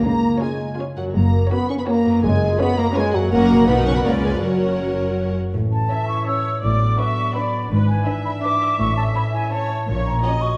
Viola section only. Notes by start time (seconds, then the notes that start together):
0.42 C#4 F4
0.78 C#4 F4
1.52 C#4 F#4
1.87 C#4 F#4
2.60 C#4 F4
2.95 C#4 F4
3.32 C#4 F#4
3.68 D#4 F#4
4.04 C#4 F4
4.41 C#4 F#4
5.90 E5
6.26 C#5
6.62 D5
6.99 E5
7.35 D5
7.71 B4
8.07 E5
9.52 C#5
9.87 C#5
10.23 D#5